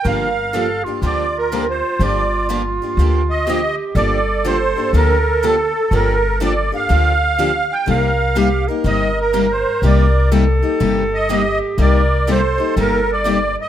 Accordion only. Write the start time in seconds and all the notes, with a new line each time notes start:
0.07 F5
1.05 D5
1.37 A#4
1.70 C5
2.03 D5
3.30 D#5
3.96 D5
4.47 C5
4.96 A#4
5.45 A4
5.94 A#4
6.43 D5
6.75 F5
7.73 G5
7.90 F5
8.87 D#5
9.20 A#4
9.52 C5
9.86 D5
11.14 D#5
11.81 D5
12.31 C5
12.80 A#4
13.12 D5
13.62 D#5